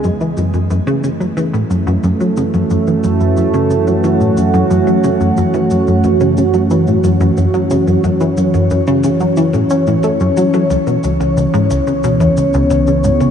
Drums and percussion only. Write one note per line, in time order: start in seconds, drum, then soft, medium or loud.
0.04 percussion blips soft
0.04 shaker medium
0.21 shaker soft
0.37 shaker medium
0.54 percussion blips soft
0.54 shaker soft
0.70 shaker medium
0.87 shaker soft
1.04 percussion blips soft
1.04 shaker medium
1.21 shaker soft
1.37 shaker medium
1.54 percussion blips soft
1.54 shaker soft
1.71 shaker medium
1.87 shaker soft
2.04 percussion blips soft
2.04 shaker medium
2.21 shaker soft
2.37 shaker medium
2.54 percussion blips soft
2.54 shaker soft
2.70 shaker medium
2.87 shaker soft
3.04 percussion blips soft
3.04 shaker medium
3.20 shaker soft
3.37 shaker medium
3.54 percussion blips soft
3.54 shaker soft
3.70 shaker medium
3.87 shaker soft
4.04 percussion blips soft
4.04 shaker medium
4.21 shaker soft
4.37 shaker medium
4.54 percussion blips soft
4.54 shaker soft
4.71 shaker medium
4.87 shaker soft
5.04 percussion blips soft
5.04 shaker medium
5.21 shaker soft
5.37 shaker medium
5.54 percussion blips soft
5.54 shaker soft
5.71 shaker medium
5.87 shaker soft
6.04 percussion blips soft
6.04 shaker medium
6.20 shaker soft
6.37 shaker medium
6.54 percussion blips soft
6.54 shaker soft
6.70 shaker medium
6.87 shaker soft
7.04 percussion blips soft
7.04 shaker medium
7.21 shaker soft
7.37 shaker medium
7.54 percussion blips soft
7.54 shaker soft
7.71 shaker medium
7.87 shaker soft
8.04 percussion blips soft
8.04 shaker medium
8.20 shaker soft
8.37 shaker medium
8.54 percussion blips soft
8.54 shaker soft
8.70 shaker medium
8.87 shaker soft
9.03 percussion blips soft
9.03 shaker medium
9.20 shaker soft
9.37 shaker medium
9.53 percussion blips soft
9.53 shaker soft
9.70 shaker medium
9.87 shaker soft
10.03 percussion blips soft
10.03 shaker medium
10.20 shaker soft
10.37 shaker medium
10.54 percussion blips soft
10.54 shaker soft
10.70 percussion blips soft
10.70 shaker medium
10.87 shaker soft
11.04 shaker medium
11.21 percussion blips soft
11.21 shaker soft
11.37 shaker medium
11.54 shaker soft
11.71 percussion blips soft
11.71 shaker medium
11.87 shaker soft
12.04 shaker medium
12.20 percussion blips soft
12.20 shaker soft
12.37 shaker medium
12.54 shaker soft
12.70 percussion blips soft
12.70 shaker medium
12.87 shaker soft
13.04 shaker medium
13.21 percussion blips soft
13.21 shaker soft